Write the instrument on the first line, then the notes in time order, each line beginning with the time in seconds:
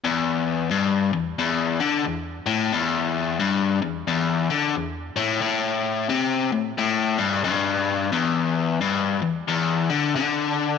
overdriven electric guitar
0.05 E2
0.71 G2
1.13 E2
1.39 E2
1.80 D3
2.05 E2
2.46 A2
2.73 E2
3.40 G2
3.82 E2
4.07 E2
4.50 D3
4.75 E2
5.16 A2
5.41 A2
6.09 C3
6.52 A2
6.78 A2
7.18 G2
7.44 G2
8.12 E2
8.81 G2
9.22 E2
9.48 E2
9.90 D3
10.16 D3